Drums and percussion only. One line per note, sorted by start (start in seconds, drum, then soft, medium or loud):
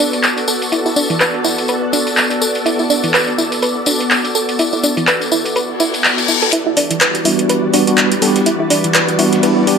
0.00 tambourine medium
0.13 closed hi-hat soft
0.13 tambourine soft
0.23 clap loud
0.23 closed hi-hat medium
0.23 tambourine soft
0.37 closed hi-hat soft
0.37 tambourine soft
0.48 tambourine medium
0.62 closed hi-hat soft
0.62 tambourine soft
0.72 closed hi-hat medium
0.72 tambourine soft
0.86 tambourine soft
0.96 tambourine medium
1.10 closed hi-hat soft
1.10 tambourine soft
1.20 clap medium
1.20 closed hi-hat medium
1.20 tambourine soft
1.34 closed hi-hat soft
1.44 tambourine medium
1.58 closed hi-hat soft
1.58 tambourine soft
1.68 closed hi-hat medium
1.68 tambourine soft
1.93 closed hi-hat soft
1.93 tambourine medium
2.07 closed hi-hat soft
2.07 tambourine soft
2.17 clap loud
2.17 closed hi-hat medium
2.17 tambourine soft
2.30 closed hi-hat medium
2.30 tambourine soft
2.42 tambourine medium
2.55 closed hi-hat soft
2.55 tambourine soft
2.66 closed hi-hat medium
2.66 tambourine soft
2.79 tambourine soft
2.90 tambourine medium
3.03 closed hi-hat medium
3.03 tambourine soft
3.14 clap loud
3.14 closed hi-hat medium
3.14 tambourine soft
3.28 closed hi-hat soft
3.38 tambourine medium
3.52 closed hi-hat soft
3.52 tambourine soft
3.62 closed hi-hat medium
3.62 tambourine soft
3.86 closed hi-hat soft
3.86 tambourine medium
4.00 closed hi-hat soft
4.00 tambourine soft
4.11 clap loud
4.11 closed hi-hat medium
4.11 tambourine soft
4.25 closed hi-hat medium
4.25 tambourine soft
4.35 tambourine medium
4.49 closed hi-hat soft
4.49 tambourine soft
4.59 closed hi-hat medium
4.59 tambourine soft
4.73 tambourine soft
4.83 closed hi-hat soft
4.83 tambourine medium
4.97 closed hi-hat soft
4.97 tambourine soft
5.08 clap loud
5.08 closed hi-hat medium
5.08 tambourine soft
5.21 closed hi-hat soft
5.21 tambourine soft
5.32 tambourine medium
5.46 closed hi-hat soft
5.46 tambourine soft
5.56 closed hi-hat medium
5.56 tambourine soft
5.80 closed hi-hat soft
5.80 tambourine medium
5.94 closed hi-hat soft
5.94 tambourine soft
6.04 clap loud
6.04 closed hi-hat medium
6.04 tambourine soft
6.18 closed hi-hat medium
6.18 tambourine soft
6.28 tambourine medium
6.42 closed hi-hat soft
6.42 tambourine soft
6.53 closed hi-hat medium
6.77 closed hi-hat medium
6.77 open hi-hat medium
6.91 closed hi-hat medium
6.91 closed hi-hat soft
7.01 snare loud
7.01 clap loud
7.01 closed hi-hat medium
7.15 closed hi-hat soft
7.25 closed hi-hat medium
7.25 open hi-hat medium
7.39 closed hi-hat medium
7.49 closed hi-hat medium
7.74 closed hi-hat medium
7.74 open hi-hat loud
7.87 closed hi-hat soft
7.98 snare loud
7.98 clap loud
7.98 closed hi-hat medium
8.12 closed hi-hat medium
8.22 snare soft
8.22 closed hi-hat medium
8.22 open hi-hat medium
8.36 snare soft
8.36 closed hi-hat soft
8.46 closed hi-hat medium
8.70 closed hi-hat medium
8.70 open hi-hat loud
8.84 closed hi-hat medium
8.95 snare loud
8.95 clap loud
8.95 closed hi-hat medium
9.09 closed hi-hat soft
9.19 closed hi-hat medium
9.19 open hi-hat medium
9.33 snare soft
9.33 closed hi-hat medium
9.43 closed hi-hat medium
9.43 open hi-hat medium
9.67 closed hi-hat medium
9.67 open hi-hat loud